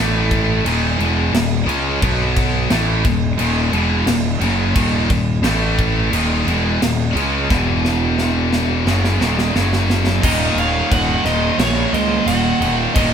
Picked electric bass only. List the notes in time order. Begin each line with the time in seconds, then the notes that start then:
Already playing: A1
0.65 D#1
0.99 E1
1.32 D#1
1.67 C#2
2.03 B1
2.70 A1
3.05 D#1
3.39 D#1
3.72 E1
4.06 D#1
4.40 F#1
4.75 D#1
5.10 D#1
5.42 A1
6.11 D#1
6.46 E1
6.81 D#1
7.15 C#2
7.51 E1
8.86 F#1
9.21 D#1
9.55 F#1
10.23 D#1
10.56 D#1
10.91 D#1
11.24 D#1
11.59 A#1
11.93 C#2
12.26 D#1
12.60 D#1
12.96 D#1